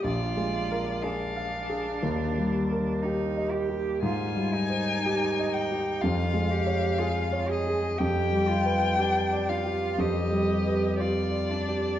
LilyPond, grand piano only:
\new Staff \with { instrumentName = "Grand piano" } { \time 4/4 \key g \phrygian \tempo 4 = 60 \tuplet 3/2 { bes,,8 aes8 bes'8 aes'8 f''8 aes'8 ees,8 g8 bes'8 g'8 ees''8 g'8 } | \tuplet 3/2 { aes,8 g8 c''8 g'8 ees''8 g'8 f,8 aes8 des''8 aes'8 des''8 aes'8 } | \tuplet 3/2 { f,8 g8 b'8 g'8 d''8 g'8 f,8 g8 b'8 g'8 d''8 g'8 } | }